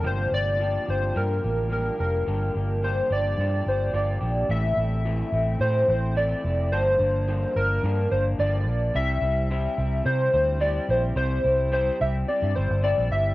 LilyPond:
<<
  \new Staff \with { instrumentName = "Synth keys" } { \time 4/4 \key g \dorian \tempo 4 = 108 c''8 d''4 c''8 bes'4 bes'8 bes'8~ | bes'4 c''8 d''4 c''8 d''4 | e''2 c''8 c''8 d''4 | c''4. bes'4 c''8 d''4 |
e''2 c''8 c''8 d''8 c''8 | c''4 c''8 e''8 d''8 c''8 d''8 e''8 | }
  \new Staff \with { instrumentName = "Clean electric guitar" } { \time 4/4 \key g \dorian <g, d f bes d' g'>8 <f bes d' g'>8 <f bes d' g'>8 <f bes d' g'>8 <g, d f bes d' g'>8 <f bes d' g'>8 <f bes d' g'>8 <f bes d' g'>8 | <g, d f bes d' g'>8 <f bes d' g'>8 <f bes d' g'>8 <f bes d' g'>8 <g, d f bes d' g'>8 <f bes d' g'>8 <f bes d' g'>8 <f bes d' g'>8 | <a, e a c' e'>8 <a c' e'>8 <a, e a c' e'>8 <a c' e'>8 <e a c' e'>8 <a c' e'>8 <a, e a c' e'>8 <a c' e'>8 | <g, d f bes d'>8 <f bes d'>8 <g, d f bes d'>8 <f bes d'>8 <d f bes d'>8 <f bes d'>8 <g, d f bes d'>8 <f bes d'>8 |
<c g c' e'>8 <g c' e'>8 <c g c' e'>8 <g c' e'>8 <c g c' e'>8 <g c' e'>8 <c g c' e'>8 <g c' e'>8 | <c g c' e'>8 <g c' e'>8 <c g c' e'>8 <g c' e'>8 <c g c' e'>8 <g c' e'>8 <c g c' e'>8 <g c' e'>8 | }
  \new Staff \with { instrumentName = "Ambient pad" } { \clef bass \time 4/4 \key g \dorian << { f'1 | g'1 | r1 | r1 |
r1 | r1 | } \\ { <c d g bes>1~ | <c d g bes>1 | r1 | r1 |
r1 | r1 | } >> }
  \new Staff \with { instrumentName = "Fingered electric bass" } { \clef bass \time 4/4 \key g \dorian g,,8 g,,4 g,,8 g,8 a,,4 f,,8 | g,,8 g,,4 g,,8 g,8 g,,8 g,,8 bes,,8 | a,,8 a,,4 a,,8 a,8 a,,4 f,,8 | g,,8 g,,4 g,,8 g,8 g,,8 g,,8 bes,,8 |
c,8 c,4 c,8 c8 d,4 bes,,8 | c,8 c,4 c,8 r16 g,16 g,,16 g,,8 bes,,16 g,,8 | }
>>